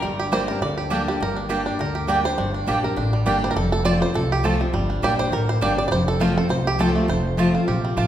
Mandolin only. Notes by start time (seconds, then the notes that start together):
0.32 A#3 G4 D5 G5
0.90 A#3 G4 D5 G5
1.49 A#3 G4 D5 G5
2.08 A#3 G4 D5 G5
2.67 A#3 G4 D5 G5
3.26 A#3 G4 D5 G5
3.85 C4 F4 C5 A5
4.44 C4 F4 C5 A5
5.03 A#3 G4 D5 G5
5.61 A#3 G4 D5 G5
6.20 C4 F4 C5 A5
6.79 C4 F4 C5 A5
7.38 C4 F4 C5 A5
7.97 C4 F4 C5 A5